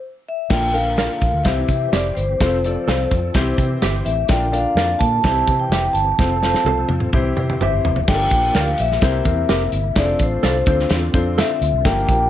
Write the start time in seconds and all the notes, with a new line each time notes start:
0.28 E5
0.50 A#1 D3 A#3 D4 F4 A#4 G5, kick, snare, crash
0.73 A#3 D4 F4 A#4 F5, closed hi-hat
0.98 A#4 D5 F5, snare, closed hi-hat
1.21 A#1, kick, closed hi-hat
1.33 D2
1.44 C2 E3 C4 E4 G4 C5 E5, kick, snare, closed hi-hat
1.68 C3, kick, closed hi-hat
1.92 F1 G4 C5 D5 E5, snare, closed hi-hat
2.15 G1 C5, closed hi-hat
2.40 F1 F3 C4 F4 A4 C5, kick, snare, closed hi-hat
2.64 C4 F4 A4 D5, closed hi-hat
2.88 C2 A4 C5 F5, snare, closed hi-hat
3.11 F2, kick, closed hi-hat
3.34 C2 E3 C4 E4 G4 C5, kick, snare, closed hi-hat
3.58 C3, kick, closed hi-hat
3.82 G1 G4 C5 E5, snare, closed hi-hat
4.05 A1 E5, closed hi-hat
4.29 A#1 D3 A#3 D4 F4 A#4 D5 G5, kick, snare, closed hi-hat
4.52 D4 F4 A#4 D5 F5, closed hi-hat
4.75 F2 A#4 D5 F5, snare, closed hi-hat
4.99 A#2 A5, kick, closed hi-hat
5.23 C2 E3 C4 E4 G4 C5, kick, snare, closed hi-hat
5.47 C3, kick, closed hi-hat
5.60 G5
5.70 F1 G4 C5 E5, snare, closed hi-hat
5.93 G1 A5, closed hi-hat
6.18 F1 F3 C4 F4 A4 C5, kick, snare
6.43 C4 F4 A4 C5, snare
6.54 snare
6.65 C2 A4 C5 F5, high tom
6.89 F2, high tom
7.00 mid tom
7.13 C2 E3 C4 E4 G4 C5, kick, mid tom
7.37 C3, mid tom
7.50 mid tom
7.61 G1 G4 C5 E5, mid tom
7.85 F1, floor tom
7.96 floor tom
8.08 G1 F3 A#3 D4 F4 G4 A4 D5 G5, kick, snare, crash
8.14 A#4
8.30 A#1 G5, kick, closed hi-hat
8.54 D2 A#4 D5 F5, snare, closed hi-hat
8.78 A#1 E5, closed hi-hat
8.92 snare
9.01 C2 C3 C4 E4 G4 A#4 C5, kick, snare, closed hi-hat
9.25 E2 C4 E4 G4 A#4 C5, kick, closed hi-hat
9.49 F1 G4 A#4 E5, snare, closed hi-hat
9.72 G1, closed hi-hat
9.95 F1 D3 A3 C4 D4 F4 G#4 C5 D5, kick, snare, closed hi-hat
10.02 A4
10.19 A1 C5, kick, closed hi-hat
10.43 C2 A4 D5 F5, snare, closed hi-hat
10.66 D2 C4 D4 F4 A4 C5, kick, closed hi-hat
10.80 snare
10.90 E2, snare, closed hi-hat
11.14 F2 C4 D4 F4 A4 C5, kick, closed hi-hat
11.38 A4 C5 E5 F5, snare, closed hi-hat
11.61 D2, closed hi-hat
11.73 C2
11.85 G1 F3 A#3 D4 F4 G4 A#4 G5, kick, snare, closed hi-hat
12.07 A#1 G5, kick, closed hi-hat